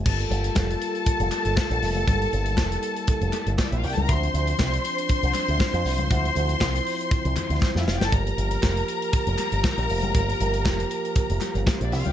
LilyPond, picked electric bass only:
\new Staff \with { instrumentName = "Picked electric bass" } { \clef bass \time 4/4 \key g \dorian \tempo 4 = 119 g,,8 g,,8 f,,8 r8. f,,16 r16 g,,16 r16 bes,,16 f,,16 fis,,16 | g,,8 g,,8 f,,8 r8. f,,16 r16 g,,16 r16 bes,,16 c,16 cis,16 | d,8 d,8 c,8 r8. c,16 r16 d,16 r16 f,16 c,16 cis,16 | d,8 d,8 c,8 r8. c,16 r16 d,16 r16 f,16 f,,16 fis,,16 |
g,,8 g,,8 f,,8 r8. f,,16 r16 g,,16 r16 bes,,16 f,,16 fis,,16 | g,,8 g,,8 f,,8 r8. f,,16 r16 g,,16 r16 bes,,16 c,16 cis,16 | }